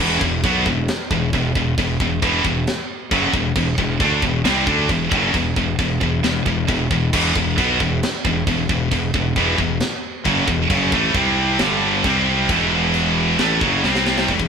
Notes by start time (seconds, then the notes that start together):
0.00 E1 E2 B2 E3
0.21 E1 E2 B2, kick
0.44 B1 B2 F#3 B3, kick, china
0.66 E1 E2 B2, kick
0.88 snare, china
1.11 E1 E2 B2, kick
1.33 E1 E2 B2, kick, china
1.55 E1 E2 B2, kick
1.78 E1 E2 B2, kick, china
2.00 E1 E2 B2, kick
2.22 E1 E2 B2 E3, kick, china
2.45 E1 E2 B2, kick
2.67 snare, china
3.11 F#1 F#2 C#3 F#3, kick, china
3.33 E1 E2 B2, kick
3.56 E1 E2 B2, kick, china
3.78 E1 E2 B2, kick
4.00 D2 D3 A3 D4, kick, china
4.22 E1 E2 B2, kick
4.45 C2 C3 G3 C4, snare, china
4.66 D2 D3 A3 D4, kick
4.89 E1 E2 B2, kick, china
5.11 F#1 F#2 C#3 F#3, kick
5.34 E1 E2 B2, kick, china
5.56 E1 E2 B2, kick
5.79 E1 E2 B2, kick, china
6.01 E1 E2 B2, kick
6.24 E1 E2 B2, snare, china
6.46 E1 E2 B2, kick
6.68 E1 E2 B2, kick, china
6.91 E1 E2 B2, kick
7.13 E1 E2 B2 E3, kick, crash, china
7.36 E1 E2 B2, kick
7.58 B1 B2 F#3 B3, kick, china
7.80 E1 E2 B2, kick
8.03 snare, china
8.25 E1 E2 B2, kick
8.47 E1 E2 B2, kick, china
8.69 E1 E2 B2, kick
8.92 E1 E2 B2, kick, china
9.14 E1 E2 B2, kick
9.36 E1 E2 B2 E3, kick, china
9.58 E1 E2 B2, kick
9.80 snare, china
10.25 F#1 F#2 C#3 F#3, kick, china
10.48 E1 E2 B2, kick
10.70 F#1 F#2 C#3 F#3, kick, china
10.92 A1 A2 E3 A3, kick
11.14 C2 C3 G3 C4, kick, china
11.59 G1 G2 D3 G3, snare, china
12.04 C2 C3 G3 C4, kick, china
12.49 E1 E2 B2 E3, kick, china
12.94 china
13.39 A1 A2 E3 A3, snare, china
13.61 F#1 F#2 C#3 F#3, kick
13.84 C2 C3 G3 C4, snare
13.95 snare
14.06 snare
14.18 snare
14.28 E1 E2 B2 E3, kick, crash
14.40 E2 B2, kick